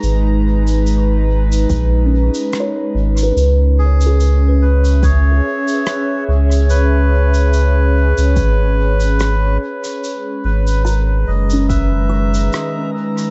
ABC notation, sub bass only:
X:1
M:4/4
L:1/16
Q:"Swing 16ths" 1/4=72
K:C#dor
V:1 name="Sub bass" clef=bass
G,,,8 A,,,3 z3 G,,,2 | C,,8- C,,2 z4 C,,2- | C,,6- C,, C,, G,,,6 z2 | z2 G,,,4 F,,,6 z4 |]